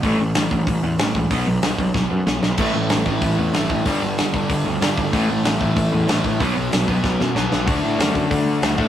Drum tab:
CC |--------|--------|x-------|--------|
HH |o-o-o-o-|o-o-----|--o-o-o-|o-o-o-o-|
SD |--o---o-|--o-o-oo|--o---o-|--o---o-|
BD |o--oo--o|o--oo---|o--oo--o|o--oo--o|

CC |--------|--------|--------|
HH |o-o-o-o-|o-o-----|o-o-o-o-|
SD |--o---o-|--o-oooo|--o---o-|
BD |o--oo--o|o--oo---|o--oo--o|